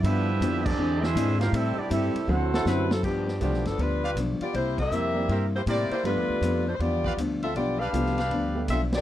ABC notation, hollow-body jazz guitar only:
X:1
M:4/4
L:1/8
Q:"Swing" 1/4=159
K:Dmix
V:1 name="Hollow-body jazz guitar"
[G,,=F,B,D] z [G,,F,B,D] z [E,^B,D^G] z [E,B,DG] z | [A,,G,CE] z [A,,G,CE] z [D,F,CE] z [D,F,CE] z | [K:Gmix] [G,,F,B,D] z [G,,F,B,D] z [G,,F,B,D] z [G,,F,B,D] z | [C,G,_B,E] z [C,G,B,E] z [C,G,B,E] z [C,G,B,E] z |
[G,,F,B,D] z [G,,F,B,D] z [G,,F,B,D] z [G,,F,B,D] z | [G,,F,B,D] z [G,,F,B,D] z [G,,F,B,D] z [G,,F,B,D] z |]